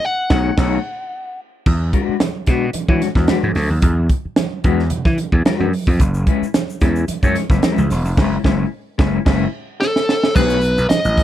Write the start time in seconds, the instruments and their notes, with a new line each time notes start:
0.05 lead electric guitar F#5
0.30 slap bass B1, clean electric guitar A3 D#4 G#4 C#5, kick, snare
0.57 slap bass B1, clean electric guitar A3 D#4 G#4 C#5, kick, snare, crash
1.66 slap bass E2, kick, crash
1.93 clean electric guitar G#3 D4 F#4 B4, kick, closed hi-hat
2.09 muted slap bass stroke
2.20 snare, closed hi-hat, high conga
2.46 slap bass B2, clean electric guitar G#3 D4 F#4 B4, kick, snare, closed hi-hat
2.73 muted slap bass stroke, closed hi-hat, muted conga
2.88 slap bass E3, clean electric guitar G#3 D4 F#4 C#5, kick
3.02 snare, closed hi-hat, muted conga
3.15 slap bass E2, clean electric guitar G#3 D4 F#4 B4, kick, snare
3.28 clean electric guitar G#3 D4 F#4 B4, snare, closed hi-hat, high conga
3.43 slap bass G#2, high conga
3.55 slap bass D2, snare, open hi-hat
3.70 slap bass D#2
3.82 slap bass E2, kick, closed hi-hat, muted conga
4.09 kick, closed hi-hat
4.25 muted slap bass stroke
4.36 snare, closed hi-hat, high conga
4.64 slap bass E2, clean electric guitar G#3 D4 F#4 B4, kick, closed hi-hat
4.79 snare
4.90 muted slap bass stroke, closed hi-hat, muted conga, low conga
5.05 slap bass E3, kick, snare
5.18 closed hi-hat, muted conga
5.32 slap bass E2, kick
5.45 clean electric guitar G#3 D4 F#4 B4, muted slap bass stroke, snare, closed hi-hat, high conga
5.60 slap bass F#2, high conga
5.73 open hi-hat
5.87 slap bass F2, kick
6.00 slap bass F#1, kick, closed hi-hat, shaker
6.14 shaker
6.27 clean electric guitar G#3 C#4 E4 B4, kick, closed hi-hat
6.42 muted slap bass stroke, shaker
6.54 snare, closed hi-hat, high conga, shaker
6.70 shaker
6.81 slap bass E2, clean electric guitar G#3 C#4 E4 B4, kick, snare, closed hi-hat, shaker
6.96 shaker
7.08 muted slap bass stroke, closed hi-hat, muted conga, shaker
7.23 slap bass F#2, clean electric guitar G#3 C#4 E4 C#5, kick, shaker
7.35 snare, closed hi-hat, muted conga
7.50 slap bass F#1, clean electric guitar G#3 C#4 E4 B4, kick, snare, shaker
7.63 clean electric guitar G#3 C#4 E4 B4, snare, closed hi-hat, high conga, shaker
7.76 slap bass C#2, high conga, shaker
7.90 slap bass E1, snare, open hi-hat, shaker
8.05 slap bass F1, shaker
8.17 slap bass F#1, clean electric guitar G#3 C#4 E4 B4, kick, snare, crash
8.44 slap bass F#1, clean electric guitar G#3 C#4 E4 B4, kick, snare
8.98 slap bass F#1, clean electric guitar G#3 C#4 E4 B4, kick, snare
9.25 slap bass F#1, clean electric guitar G#3 C#4 E4 B4, kick, snare, crash
9.80 lead electric guitar A4, snare
9.96 snare
10.09 snare
10.23 snare
10.35 slap bass B1, clean electric guitar A3 D#4 G#4 C#5, lead electric guitar B4, kick, crash, muted conga, shaker
10.50 shaker
10.61 closed hi-hat, shaker
10.78 slap bass B1, shaker
10.89 lead electric guitar D#5, muted slap bass stroke, snare, closed hi-hat, high conga, shaker
11.05 slap bass A1, shaker
11.17 kick, snare, closed hi-hat